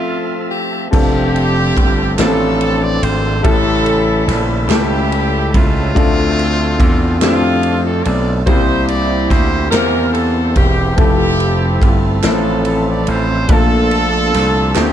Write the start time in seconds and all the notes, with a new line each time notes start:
Already playing: F3 A3 C4 E4 F4 A4 E5
0.51 G4
0.91 F1 F3 A3 C4 D4 F4 G4 A4, kick, crash
0.95 D4
1.36 ride
1.76 G1, kick, ride
2.17 A1 A3 C4 D4 F4 G4 A4, snare, clap, ride
2.22 C4
2.26 A4
2.61 ride
2.84 D5
3.02 G#1 C5, ride
3.43 A1 A2 C#3 G3 A3 C#4 E4 G4 A4 E5, kick, ride
3.86 ride
4.28 A#1, snare, ride
4.68 C#2 A3 C#4 E4 G4 A4, snare, clap, ride
4.73 C#4
5.12 ride
5.54 C#2 A3 C4 F4, kick, ride
5.94 D2 D3 E3 A3 C4 D4 F4 A4, kick, ride
6.02 F4
6.39 ride
6.80 E2, kick, ride
7.21 F2 A3 C4 D4 E4 F4 G4, snare, clap, ride
7.29 F4
7.63 ride
7.86 A4
8.04 B1 D5, ride
8.46 C2 C3 G3 A#3 C4 E4 G4 A#4 C5, kick, ride
8.88 D5, ride
9.30 D2 C5, kick, snare, ride
9.71 E2 A#3 C4 E4 G4 A#4 C5, snare, clap, ride
10.13 A4, ride
10.56 E1 G4, kick, ride
10.96 F1 F3 A3 C4 E4 G4 A4, kick, ride
11.40 ride
11.82 G1, kick, ride
12.23 A1 F3 A3 C4 E4 A4, snare, clap, ride
12.27 E4
12.65 ride
12.89 D5
13.07 A1 C5, ride
13.48 A#1 A#2 F3 A3 A#3 D4 F4 A4, kick, ride
13.53 A4
13.91 ride
14.34 C2, snare, ride
14.75 D2 A3 A#3 C4 F4 C5, snare, clap, ride
14.79 D4 G4